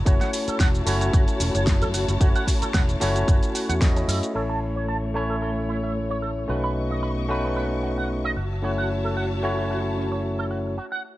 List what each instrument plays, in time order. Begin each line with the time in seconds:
Already playing: string section E4 F#4 C#5 A5
0.05 fingered electric bass F#1, tine electric piano A3 C#4 E4 F#4 C#5, clean electric guitar F#4, kick, closed hi-hat, shaker
0.21 clean electric guitar F#5, snare, closed hi-hat, shaker
0.33 open hi-hat, shaker
0.48 clean electric guitar A4, muted fingered electric bass stroke, closed hi-hat, shaker
0.60 fingered electric bass E1, clean electric guitar F#5, kick, snare, closed hi-hat, shaker
0.75 shaker
0.86 fingered electric bass F#1, tine electric piano A3 C#4 E4 F#4 C#5, clean electric guitar F#4, open hi-hat, shaker
1.01 clean electric guitar F#4, closed hi-hat, shaker
1.13 fingered electric bass F#1, clean electric guitar F#4, kick, closed hi-hat, shaker
1.28 closed hi-hat, shaker
1.40 fingered electric bass E1, clean electric guitar C#4, open hi-hat, shaker
1.55 fingered electric bass F#1, clean electric guitar C#5, closed hi-hat, shaker
1.67 kick, snare, closed hi-hat, shaker
1.81 fingered electric bass F#2, clean electric guitar A4, closed hi-hat, shaker
1.94 fingered electric bass F#1, clean electric guitar F#4, open hi-hat, shaker
2.08 fingered electric bass F#1, closed hi-hat, shaker
2.20 fingered electric bass F#1, tine electric piano A3 C#4 E4 F#4 C#5, clean electric guitar F#4, kick, closed hi-hat, shaker
2.35 clean electric guitar F#5, closed hi-hat, shaker
2.47 kick, open hi-hat, shaker
2.62 clean electric guitar A4, muted fingered electric bass stroke, closed hi-hat, shaker
2.74 fingered electric bass E1, clean electric guitar F#5, kick, snare, closed hi-hat, shaker
2.89 closed hi-hat, shaker
3.00 fingered electric bass F#1, tine electric piano A3 C#4 E4 F#4 C#5, clean electric guitar F#4, snare, open hi-hat, shaker
3.15 clean electric guitar F#4, closed hi-hat, shaker
3.28 fingered electric bass F#1, clean electric guitar F#4, kick, closed hi-hat, shaker
3.43 closed hi-hat, shaker
3.55 clean electric guitar F#4, open hi-hat, shaker
3.69 fingered electric bass E2, clean electric guitar F#5, closed hi-hat, shaker
3.80 tine electric piano A3 C#4 E4 F#4 D#5, kick, snare, closed hi-hat, shaker
3.96 clean electric guitar C#4, closed hi-hat, shaker
4.08 fingered electric bass F#2, clean electric guitar A4, open hi-hat, shaker
4.23 closed hi-hat, shaker
4.34 fingered electric bass A1, tine electric piano A3 C#4 E4 C#5, string section A3 C#5, clean electric guitar A4, crash
4.49 clean electric guitar A5
4.76 clean electric guitar C#5
4.88 clean electric guitar A5
5.14 tine electric piano A3 C#4 E4 C#5, clean electric guitar A4
5.30 clean electric guitar A4
5.42 clean electric guitar A4
5.69 clean electric guitar E4
5.83 clean electric guitar E5
6.10 clean electric guitar C#5
6.22 clean electric guitar A4
6.48 fingered electric bass B1, tine electric piano A3 C#4 D#4 F#4 B4, string section B3 D#5 C#6, clean electric guitar B4
6.64 clean electric guitar B5
6.90 clean electric guitar D#5
7.03 clean electric guitar B5
7.28 tine electric piano A3 C#4 D#4 F#4 B4, clean electric guitar B4
7.44 clean electric guitar B4
7.56 clean electric guitar B4
7.83 clean electric guitar F#4
7.98 clean electric guitar F#5
8.24 clean electric guitar D#5
8.37 fingered electric bass F#1, clean electric guitar F#4, string section F#4 C#5 E5 A5
8.62 tine electric piano A3 C#4 E4 F#4 C#5, clean electric guitar F#4
8.78 clean electric guitar F#5
9.04 clean electric guitar A4
9.17 clean electric guitar F#5
9.43 tine electric piano A3 C#4 E4 F#4 C#5, clean electric guitar F#4
9.58 clean electric guitar F#4
9.71 clean electric guitar F#4
9.97 clean electric guitar C#4
10.12 clean electric guitar C#5
10.38 clean electric guitar A4
10.51 clean electric guitar F#4
10.78 clean electric guitar F#4
10.92 clean electric guitar F#5